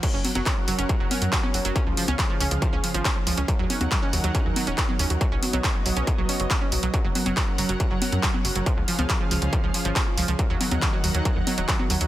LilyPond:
<<
  \new Staff \with { instrumentName = "Analog synth pad" } { \time 4/4 \key fis \major \tempo 4 = 139 << { <fis ais' fis''>1 | <cis gis' eis''>1 | <dis ais' fis''>1 | <b cis'' dis''>1 |
<fis ais' fis''>1 | <cis gis' eis''>1 | <dis ais' fis''>1 | } \\ { cis'1~ | cis'1 | dis'1 | fis'1 |
cis'1 | cis'1 | dis'1 | } >> }
  \new Staff \with { instrumentName = "Synth arpeggio sound" } { \clef bass \time 4/4 \key fis \major fis16 cis'16 fis16 fis16 cis'16 fis16 fis16 cis'16 fis16 fis16 cis'16 fis16 fis16 cis'16 fis16 fis16 | cis'16 eis16 eis16 cis'16 eis16 eis16 cis'16 eis16 eis16 cis'16 eis16 eis16 cis'16 eis16 eis16 cis'16 | fis16 fis16 cis'16 fis16 fis16 cis'16 fis16 fis16 cis'16 fis16 fis16 cis'16 fis16 fis16 cis'16 fis16 | fis16 cis'16 fis16 fis16 cis'16 fis16 fis16 cis'16 fis16 fis16 cis'16 fis16 fis16 cis'16 fis16 fis16 |
fis16 fis16 fis16 fis16 fis16 fis16 fis16 fis16 fis16 fis16 fis16 fis16 fis16 fis16 fis16 fis16 | eis16 eis16 eis16 eis16 eis16 eis16 eis16 eis16 eis16 eis16 eis16 eis16 eis16 eis16 eis16 eis16 | fis16 fis16 fis16 fis16 fis16 fis16 fis16 fis16 fis16 fis16 fis16 fis16 fis16 fis16 fis16 fis16 | }
  \new Staff \with { instrumentName = "Analog synth bass" } { \clef bass \time 4/4 \key fis \major r16 fis,,16 r16 fis,,16 r8 fis,,16 fis,,16 r16 fis,,16 r16 fis,16 r8 fis,,16 fis,,16 | r16 cis,16 r16 cis,16 r8 cis,16 cis,16 r16 cis,16 r16 gis,,16 r8 cis,16 cis,16 | r16 dis,16 r16 dis,16 r8 dis,16 dis,16 r16 dis,16 r16 dis,,16 r8 dis,16 dis,16 | r16 b,,16 r16 b,,16 r8 b,,16 b,,16 r16 b,,16 r16 fis,,16 r8 b,,16 b,,16 |
r16 fis,,16 r16 fis,,16 r8 fis,,16 fis,,16 r16 fis,,16 r16 fis,16 r8 fis,,16 fis,,16 | r16 cis,16 r16 cis,16 r8 cis,16 cis,16 r16 cis,16 r16 gis,,16 r8 cis,16 cis,16 | r16 dis,16 r16 dis,16 r8 dis,16 dis,16 r16 dis,16 r16 dis,,16 r8 dis,16 dis,16 | }
  \new DrumStaff \with { instrumentName = "Drums" } \drummode { \time 4/4 <cymc hh bd>8 <cgho hho>16 <cgho hh>16 <hc hh bd>8 hho16 hh16 <hh bd>8 <cgho hho>16 hh16 <hc hh bd>16 cgho16 hho16 hh16 | <hh bd>8 hho16 <cgho hh>16 <hc hh bd>8 hho16 hh16 <hh bd>8 hho16 hh16 <hc hh bd>8 hho16 hh16 | <hh bd>8 <cgho hho>16 <cgho hh>16 <hc hh bd>8 hho16 hh16 <hh bd>8 <cgho hho>16 hh16 <hc hh bd>16 cgho16 hho16 hh16 | <hh bd>8 <cgho hho>16 <cgho hh>16 <hc hh bd>8 hho16 hh16 <hh bd>8 hho16 hh16 <hc hh bd>8 hho16 hh16 |
<hh bd>8 <cgho hho>16 <cgho hh>16 <hc hh bd>8 hho16 hh16 <hh bd>8 <cgho hho>16 hh16 <hc hh bd>16 cgho16 hho16 hh16 | <hh bd>8 hho16 <cgho hh>16 <hc hh bd>8 hho16 hh16 <hh bd>8 hho16 hh16 <hc hh bd>8 hho16 hh16 | <hh bd>8 <cgho hho>16 <cgho hh>16 <hc hh bd>8 hho16 hh16 <hh bd>8 <cgho hho>16 hh16 <hc hh bd>16 cgho16 hho16 hh16 | }
>>